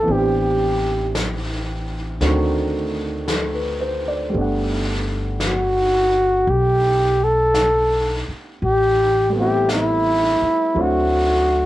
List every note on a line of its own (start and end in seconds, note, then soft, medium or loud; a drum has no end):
0.00 2.19 E3 soft
0.00 0.13 A4 medium
0.05 2.17 A1 medium
0.05 2.20 B3 soft
0.05 2.20 C4 soft
0.05 brush sweep soft
0.10 2.21 D4 soft
0.10 1.17 G4 medium
0.10 2.24 G4 soft
1.15 brush sweep soft
1.15 snare soft
1.15 hi-hat pedal medium
2.21 4.30 D2 medium
2.21 4.34 D#3 soft
2.21 4.31 A3 soft
2.21 4.34 C4 soft
2.21 4.34 D4 soft
2.21 4.34 F#4 medium
2.21 brush sweep soft
2.21 snare soft
3.27 3.78 A4 soft
3.27 brush sweep soft
3.27 snare soft
3.27 hi-hat pedal soft
3.54 4.00 B4 soft
3.80 4.13 C5 soft
4.08 4.45 D5 soft
4.29 8.59 G3 soft
4.29 8.61 A3 soft
4.34 6.43 G1 medium
4.34 8.62 B3 soft
4.34 8.63 D4 soft
4.34 brush sweep soft
4.41 8.65 F#5 soft
5.40 brush sweep soft
5.40 snare soft
5.40 hi-hat pedal soft
5.46 6.51 F#4 medium
6.47 8.23 B1 medium
6.47 7.25 G4 medium
6.47 brush sweep soft
7.24 8.29 A4 medium
7.54 brush sweep soft
7.54 snare soft
7.54 hi-hat pedal soft
8.28 muted upright bass stroke soft
8.61 10.38 A1 medium
8.61 9.32 G4 medium
8.61 brush sweep soft
9.30 10.74 G3 soft
9.30 10.74 A3 soft
9.35 10.76 B3 soft
9.35 10.75 C4 soft
9.39 10.78 E4 medium
9.39 9.69 G4 medium
9.69 10.83 E4 medium
9.69 brush sweep soft
9.69 snare soft
9.69 hi-hat pedal soft
10.42 muted upright bass stroke soft
10.74 11.66 D2 medium
10.74 11.66 F#3 soft
10.74 11.66 A3 soft
10.74 11.66 C4 soft
10.74 11.66 D4 soft
10.74 brush sweep soft
10.79 11.66 E4 medium
10.79 11.66 F#4 medium